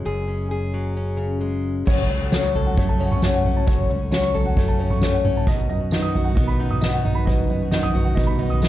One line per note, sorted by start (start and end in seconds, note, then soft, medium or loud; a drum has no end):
0.00 1.40 G#3 medium
0.00 0.28 C#4 soft
0.05 1.83 F#1 medium
0.05 1.84 F#2 medium
0.05 0.50 G#4 medium
0.28 0.96 C#4 soft
0.51 1.84 G#4 soft
0.74 1.84 F#3 medium
0.97 1.84 C#4 medium
1.17 1.83 C#3 medium
1.41 1.86 G#3 medium
1.86 2.06 F#1 medium
1.86 3.64 F#2 medium
1.86 2.09 F#2 medium
1.86 2.09 C#3 medium
1.86 2.08 F#3 medium
1.86 2.09 A3 medium
1.86 2.09 C#4 medium
1.86 2.10 F#4 medium
1.86 2.08 C#5 medium
1.86 kick medium
1.86 floor tom medium
1.86 crash medium
2.09 2.78 C#2 medium
2.09 2.21 F#3 medium
2.09 2.21 A3 medium
2.09 2.21 C#4 medium
2.09 2.20 F#4 medium
2.09 2.30 C#5 medium
2.21 2.31 F#3 soft
2.21 2.31 A3 soft
2.21 2.32 C#4 soft
2.21 2.32 F#4 medium
2.31 2.55 F#2 medium
2.31 2.55 C#3 medium
2.31 2.53 F#3 medium
2.31 4.11 F#3 medium
2.31 2.54 A3 medium
2.31 2.99 C#4 medium
2.31 2.55 C#4 medium
2.31 2.55 F#4 medium
2.31 2.53 C#5 medium
2.31 snare medium
2.31 tambourine medium
2.43 2.88 C#6 medium
2.54 2.66 F#3 medium
2.54 2.66 A3 medium
2.54 2.66 C#4 medium
2.54 2.66 F#4 medium
2.54 3.65 A4 medium
2.54 2.76 C#5 medium
2.54 floor tom medium
2.66 2.89 F#3 soft
2.66 2.88 A3 soft
2.66 2.88 C#4 soft
2.66 2.88 F#4 medium
2.66 3.11 F#5 medium
2.77 3.52 F#2 medium
2.77 3.22 A3 medium
2.77 2.98 C#5 medium
2.77 kick medium
2.77 floor tom medium
2.88 2.99 F#3 soft
2.88 3.00 A3 soft
2.88 3.00 C#4 soft
2.88 3.00 F#4 medium
2.88 3.33 A5 medium
2.99 3.65 C#3 medium
2.99 3.11 F#3 medium
2.99 3.12 A3 medium
2.99 3.45 C#4 medium
2.99 3.11 C#4 medium
2.99 3.10 F#4 medium
2.99 3.21 C#5 medium
3.11 3.21 F#3 soft
3.11 3.21 A3 soft
3.11 3.22 C#4 medium
3.11 3.22 F#4 medium
3.11 3.56 C#6 medium
3.11 floor tom medium
3.11 mid tom medium
3.22 3.66 F#2 medium
3.22 3.66 C#3 medium
3.22 3.67 F#3 medium
3.22 3.67 A3 medium
3.22 3.65 A3 medium
3.22 3.67 C#4 medium
3.22 3.68 F#4 medium
3.22 3.43 C#5 medium
3.22 snare medium
3.22 tambourine medium
3.34 3.78 F#5 medium
3.44 3.65 C#4 medium
3.44 3.65 C#5 medium
3.44 floor tom medium
3.44 mid tom medium
3.56 4.01 A5 medium
3.66 3.86 F#1 medium
3.66 5.44 F#2 medium
3.66 3.90 F#2 medium
3.66 3.90 C#3 medium
3.66 3.88 F#3 medium
3.66 3.89 A3 medium
3.66 3.89 C#4 medium
3.66 3.90 F#4 medium
3.66 3.88 C#5 medium
3.66 kick loud
3.66 floor tom medium
3.89 4.57 C#2 medium
3.89 4.00 F#3 medium
3.89 4.01 A3 medium
3.89 4.00 C#4 medium
3.89 3.99 F#4 medium
3.89 4.10 C#5 medium
4.00 4.11 F#3 soft
4.00 4.11 A3 soft
4.00 4.12 C#4 medium
4.00 4.11 F#4 soft
4.11 4.34 F#2 medium
4.11 4.34 C#3 medium
4.11 5.92 F#3 medium
4.11 4.32 F#3 medium
4.11 4.33 A3 medium
4.11 4.79 C#4 medium
4.11 4.34 C#4 medium
4.11 4.35 F#4 medium
4.11 4.32 C#5 medium
4.11 snare medium
4.11 tambourine medium
4.22 4.68 C#6 medium
4.33 4.45 F#3 medium
4.33 4.45 A3 medium
4.33 4.45 C#4 medium
4.33 4.44 F#4 medium
4.33 5.44 A4 medium
4.33 4.55 C#5 medium
4.33 floor tom medium
4.45 4.69 F#3 soft
4.45 4.68 A3 soft
4.45 4.68 C#4 soft
4.45 4.68 F#4 medium
4.45 4.91 F#5 medium
4.57 5.32 F#2 medium
4.57 5.03 A3 medium
4.57 4.77 C#5 medium
4.57 kick loud
4.57 floor tom medium
4.68 4.77 F#3 soft
4.68 4.78 A3 soft
4.68 4.78 C#4 soft
4.68 4.79 F#4 medium
4.68 5.13 A5 medium
4.78 5.44 C#3 medium
4.78 4.90 F#3 medium
4.78 4.90 A3 medium
4.78 4.91 C#4 medium
4.78 5.24 C#4 medium
4.78 4.90 F#4 medium
4.78 5.01 C#5 medium
4.90 5.02 F#3 soft
4.90 5.02 A3 soft
4.90 5.02 C#4 medium
4.90 5.02 F#4 medium
4.90 5.35 C#6 medium
4.90 floor tom medium
4.90 mid tom medium
5.01 5.47 F#2 medium
5.01 5.47 C#3 medium
5.01 5.47 F#3 medium
5.01 5.48 A3 medium
5.01 5.45 A3 medium
5.01 5.48 C#4 medium
5.01 5.49 F#4 medium
5.01 5.24 C#5 medium
5.01 snare medium
5.01 tambourine medium
5.13 5.47 F#5 medium
5.24 5.44 C#4 medium
5.24 5.47 C#5 medium
5.24 floor tom medium
5.24 mid tom medium
5.37 5.47 A5 medium
5.47 5.66 B1 medium
5.47 5.69 B2 medium
5.47 5.92 B2 medium
5.47 5.68 D#3 medium
5.47 5.69 B3 medium
5.47 5.69 D#4 medium
5.47 5.69 F#4 medium
5.47 5.68 D#5 medium
5.47 kick loud
5.47 floor tom medium
5.69 6.37 F#2 medium
5.69 5.80 D#3 medium
5.69 5.81 B3 medium
5.69 5.80 D#4 medium
5.69 5.79 F#4 medium
5.69 5.91 D#5 medium
5.80 5.91 B3 soft
5.80 5.92 D#4 soft
5.80 5.92 F#4 medium
5.91 6.14 B2 medium
5.91 6.14 D#3 medium
5.91 7.70 D#3 medium
5.91 6.15 B3 medium
5.91 6.15 D#4 medium
5.91 6.58 D#4 medium
5.91 6.15 F#4 medium
5.91 6.13 D#5 medium
5.91 snare medium
5.91 tambourine medium
6.02 6.48 D#6 medium
6.14 6.27 B3 medium
6.14 6.27 D#4 medium
6.14 7.94 F#4 medium
6.14 6.26 F#4 medium
6.14 6.34 D#5 medium
6.14 floor tom medium
6.24 6.49 F#4 medium
6.24 6.70 F#5 medium
6.28 6.50 B3 soft
6.28 6.49 D#4 soft
6.35 7.12 B2 medium
6.35 6.83 B3 medium
6.35 6.58 D#5 medium
6.35 kick loud
6.35 floor tom medium
6.47 6.61 D#4 soft
6.47 6.60 F#4 medium
6.47 6.93 B5 medium
6.52 6.60 B3 soft
6.59 7.24 F#2 medium
6.59 6.71 D#3 medium
6.59 6.72 B3 medium
6.59 7.04 D#4 medium
6.59 6.71 D#4 medium
6.59 6.79 D#5 medium
6.63 6.70 F#4 medium
6.71 6.83 B3 soft
6.71 6.83 D#4 medium
6.71 6.82 F#4 medium
6.71 7.16 D#6 medium
6.71 floor tom medium
6.71 mid tom medium
6.81 7.26 B2 medium
6.81 7.26 D#3 medium
6.81 8.17 B3 medium
6.81 7.27 B3 medium
6.81 7.27 D#4 medium
6.81 7.28 F#4 medium
6.81 7.02 D#5 medium
6.81 snare medium
6.81 tambourine medium
6.93 7.38 F#5 medium
7.04 7.25 D#4 medium
7.04 7.24 D#5 medium
7.04 floor tom medium
7.04 mid tom medium
7.15 7.60 B5 medium
7.26 7.46 B1 medium
7.26 7.72 B2 medium
7.26 7.50 B2 medium
7.26 7.49 D#3 medium
7.26 7.49 B3 medium
7.26 7.50 D#4 medium
7.26 7.50 F#4 medium
7.26 7.47 D#5 medium
7.26 kick loud
7.26 floor tom medium
7.39 mid tom medium
7.48 8.18 F#2 medium
7.48 7.61 D#3 medium
7.48 7.61 B3 medium
7.48 7.61 D#4 medium
7.48 7.61 F#4 medium
7.48 7.70 D#5 medium
7.62 7.72 B3 soft
7.62 7.73 D#4 soft
7.62 7.73 F#4 soft
7.71 7.95 B2 medium
7.71 8.68 D#3 medium
7.71 7.93 D#3 medium
7.71 7.94 B3 medium
7.71 8.38 D#4 medium
7.71 7.95 D#4 medium
7.71 7.96 F#4 medium
7.71 7.92 D#5 medium
7.71 snare medium
7.71 tambourine medium
7.83 8.28 D#6 medium
7.83 floor tom medium
7.93 8.06 D#3 medium
7.93 8.06 B3 medium
7.93 8.06 D#4 medium
7.93 8.68 F#4 medium
7.93 8.13 D#5 medium
7.93 floor tom medium
7.97 8.06 F#4 medium
8.03 8.29 F#4 medium
8.03 8.50 F#5 medium
8.08 8.30 B3 soft
8.08 8.29 D#4 soft
8.15 8.68 B2 medium
8.15 8.62 B3 medium
8.15 8.36 D#5 medium
8.15 kick medium
8.15 floor tom medium
8.27 8.40 F#4 medium
8.27 8.68 B5 medium
8.27 floor tom medium
8.31 8.40 B3 soft
8.31 8.41 D#4 soft
8.38 8.68 F#2 medium
8.38 8.51 D#3 medium
8.38 8.52 B3 medium
8.38 8.68 D#4 medium
8.38 8.61 D#5 medium
8.42 8.52 D#4 medium
8.42 8.50 F#4 medium
8.50 8.60 B3 soft
8.50 8.61 D#4 soft
8.50 8.61 F#4 medium
8.50 8.68 D#6 medium
8.50 floor tom medium
8.61 8.68 B2 medium
8.61 8.68 D#3 medium
8.61 8.68 B3 medium
8.61 8.68 D#4 medium
8.61 8.68 F#4 medium
8.61 8.68 D#5 medium
8.61 snare medium
8.61 tambourine loud